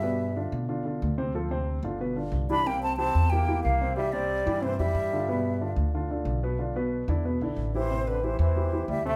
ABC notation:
X:1
M:4/4
L:1/8
Q:1/4=183
K:Gmix
V:1 name="Flute"
e3 z4 z | z6 z b | g a a2 g2 f2 | e d3 c e3- |
e3 z4 z | z6 z c- | c B c c3 e e |]
V:2 name="Grand piano"
[B,,B,B]2 [D,DF]2 [D,DF] [D,DF]2 [C,Cc] | [F,FA] [C,Cc]2 [D,DF] [B,,B,B] [D,DF]2 [E,EG] | [C,Cc]2 [E,EG]2 [E,EG] [E,EG]2 [C,Cc] | [E,EG] [C,Cc]2 [E,EG] [C,Cc] [E,EG]2 [D,DF] |
[B,,B,B]2 [D,DF]2 [D,DF] [D,DF]2 [B,,B,B] | [D,DF] [B,,B,B]2 [D,DE] [B,,B,B] [D,DE]2 [E,EG] | [C,Cc]2 [E,EG]2 [E,EG] [E,EG]2 [C,Cc] |]
V:3 name="Trombone" clef=bass
G,3 z4 z | z6 z D | _B, C C2 B,2 B,2 | G, G,3 E, G,3- |
G,3 z4 z | z6 z E,- | E, D, E, E,3 G, A, |]
V:4 name="Upright bass" clef=bass
G,,3 B,,3 D,,2- | D,,3 G,,,3 C,,2- | C,,3 E,,3 C,,2- | C,,3 G,,2 F,, G,,2- |
G,,3 D,,3 B,,,2- | B,,,3 E,,2 B,,, A,,,2- | A,,,3 E,,3 D,,2 |]